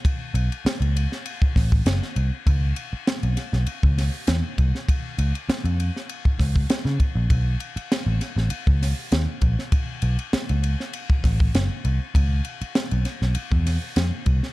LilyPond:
<<
  \new Staff \with { instrumentName = "Picked electric bass" } { \clef bass \time 4/4 \key b \mixolydian \tempo 4 = 99 r8 b,,16 r8 cis,8 r8. a,,8 fis,,16 r16 bis,,16 r16 | cis,8 r8. b,,16 r16 b,,16 r16 cis,8 r16 e,16 r16 bis,,16 r16 | r8 cis,16 r8 eis,8 r8. cis,8 r16 cis16 r16 ais,,16 | b,,8 r8. a,,16 r16 a,,16 r16 cis,8 r16 dis,16 r16 ais,,16 r16 |
r8 b,,16 r8 cis,8 r8. a,,8 fis,,16 r16 bis,,16 r16 | cis,8 r8. b,,16 r16 b,,16 r16 e,8 r16 eis,16 r16 bis,,16 r16 | }
  \new DrumStaff \with { instrumentName = "Drums" } \drummode { \time 4/4 <bd rb>8 rb16 rb16 <rb sn>16 rb16 rb16 sn16 rb16 bd16 <hho bd rb sn>16 bd16 <hhp rb sn>16 sn16 rb8 | <bd rb>8 rb8 <rb sn>16 rb16 <rb sn>16 sn16 rb16 bd16 <hho rb sn>8 <hhp rb sn>8 <bd rb>16 sn16 | <bd rb>8 rb16 rb16 <rb sn>16 rb16 rb16 sn16 rb16 bd16 <hho bd rb sn>16 bd16 <hhp rb sn>16 sn16 <bd rb>8 | <bd rb>8 rb16 rb16 <rb sn>8 <rb sn>16 sn16 rb16 bd16 <hho rb sn>8 <hhp rb sn>8 <bd rb>16 sn16 |
<bd rb>8 rb16 rb16 <rb sn>16 rb16 rb16 sn16 rb16 bd16 <hho bd rb sn>16 bd16 <hhp rb sn>8 rb8 | <bd rb>8 rb16 rb16 <rb sn>16 rb16 <rb sn>16 sn16 rb16 bd16 <hho rb sn>8 <hhp rb sn>8 <bd rb>16 sn16 | }
>>